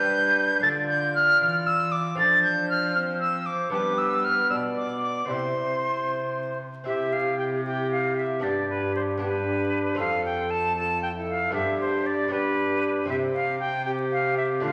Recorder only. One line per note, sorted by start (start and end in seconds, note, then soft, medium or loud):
0.00 0.62 B4 medium
0.63 1.95 D5 medium
2.18 3.70 C5 medium
3.73 4.52 B4 medium
4.50 5.29 D5 medium
5.30 6.58 C5 medium
6.86 7.61 G4 medium
7.66 8.42 G4 medium
8.43 9.19 G4 medium
9.22 9.98 G4 medium
9.99 10.75 A4 medium
10.78 11.55 A4 medium
11.54 12.31 G4 medium
12.31 13.07 G4 medium
13.09 13.58 G4 medium
13.86 14.65 G4 medium
14.63 14.72 F4 medium